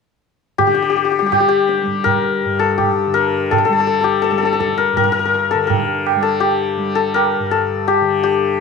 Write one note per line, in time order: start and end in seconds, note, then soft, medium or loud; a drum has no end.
0.58 3.06 D3 medium
0.58 0.66 G4 medium
0.58 tabla tin medium
0.58 tabla ge medium
0.67 0.74 G4 medium
0.75 0.82 G4 medium
0.82 0.89 G4 medium
0.90 0.96 G4 medium
0.96 1.04 G4 soft
1.05 1.11 G4 medium
1.12 1.18 G4 medium
1.19 1.83 G3 medium
1.19 1.26 G4 medium
1.26 1.32 G4 medium
1.32 1.40 G4 medium
1.32 tabla na medium
1.32 tabla ge medium
1.40 1.48 G4 medium
1.49 2.77 G4 medium
1.69 tabla te medium
1.83 3.69 G3 soft
1.87 tabla ge soft
2.04 2.65 A#4 medium
2.04 tabla tin medium
2.04 tabla ge medium
2.45 4.92 G2 medium
2.59 3.20 A4 medium
2.78 4.03 G4 medium
2.78 tabla tin medium
2.78 tabla ge medium
3.07 5.54 D3 medium
3.14 3.57 A#4 medium
3.51 3.58 A4 medium
3.51 tabla tin medium
3.51 tabla ge medium
3.58 3.65 A4 medium
3.65 4.31 G3 medium
3.65 3.72 A4 medium
3.73 3.80 A4 medium
3.80 3.86 A4 medium
3.87 4.00 A4 medium
4.01 6.40 G4 medium
4.01 4.21 A4 medium
4.22 4.30 A4 medium
4.22 tabla te medium
4.31 6.16 G3 medium
4.31 4.38 A4 medium
4.38 4.45 A4 medium
4.43 4.52 A4 medium
4.43 tabla te soft
4.53 4.60 A4 medium
4.60 4.84 A4 medium
4.60 tabla ke soft
4.78 4.96 A#4 medium
4.78 tabla te soft
4.93 7.39 G2 medium
4.97 5.03 A#4 medium
4.97 tabla tin medium
4.97 tabla ge medium
5.04 5.12 A#4 medium
5.12 5.19 A#4 medium
5.19 5.25 A#4 medium
5.25 5.34 A#4 medium
5.34 5.57 A#4 medium
5.51 8.01 D3 medium
5.51 5.73 A4 medium
5.67 6.29 A#4 medium
5.67 tabla tin medium
5.67 tabla ge medium
6.07 tabla na medium
6.16 6.77 G3 medium
6.23 6.95 A4 medium
6.40 7.87 G4 medium
6.40 tabla tin medium
6.77 8.60 G3 medium
6.95 7.20 A4 medium
7.14 7.57 A#4 medium
7.14 tabla na medium
7.39 8.60 G2 medium
7.51 8.60 A4 medium
7.88 8.23 G4 medium
7.88 tabla tin medium
8.01 8.60 D3 medium
8.23 8.60 G4 medium